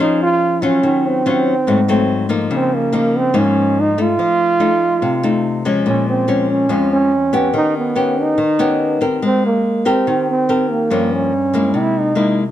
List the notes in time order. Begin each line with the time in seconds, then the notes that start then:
0.00 F3 C#4 D#4 G#4 C5
0.23 F4
0.62 F#3 C#4 F4
0.83 D#3
1.08 C4
1.26 F#3 C#4 F4
1.67 G#2 F#3 A3 C4
1.88 F#3 A3 C4
2.29 F3 A#3 D#4
2.51 C#3 C4
2.75 A#3
2.93 F3 A#3 D#4
3.18 C4
3.34 G#2 F3 A#3 D#4
3.39 C#4
3.80 D#4
3.98 A3 D#4 F4
4.19 F3
4.60 A3 D#4
5.02 C3
5.23 A3 D#4
5.65 F3 G#3 C#4
5.86 A#2 C#4
6.09 C4
6.28 F3 G#3 C#4
6.51 C#4
6.69 F2 F3 G#3 C#4
6.93 C#4
7.33 B3 C#4 G4
7.54 D#3 D#4
7.78 B3
7.96 B3 C#4 G4
8.20 D#4
8.38 D#3
8.59 B3 C#4 G4
9.01 C4 G4 A#4
9.22 G#3 C4
9.46 A#3
9.85 C4 G4 A#4
10.07 D#3
10.30 C4
10.49 C4 G4 A#4
10.71 A#3
10.90 G2 F3 A#3 C#4
11.14 C#4
11.54 G#3 A#3 E4
11.74 C3
11.79 E4
12.00 D#4
12.15 G#3 A#3 E4